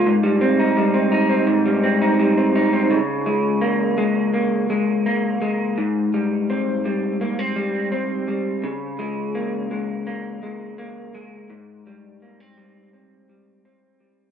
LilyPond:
\new Staff \with { instrumentName = "Clean electric guitar" } { \clef bass \time 4/4 \key aes \major \tempo 4 = 84 aes,16 g16 c'16 ees'16 g16 c'16 ees'16 c'16 aes,16 g16 c'16 ees'16 g16 c'16 ees'16 c'16 | des8 aes8 bes8 aes8 bes8 aes8 bes8 aes8 | aes,8 g8 c'8 g8 bes16 c'16 g8 c'8 g8 | des8 aes8 bes8 aes8 bes8 aes8 bes8 aes8 |
aes,8 g8 bes16 c'16 g8 c'8 g8 c'8 g8 | }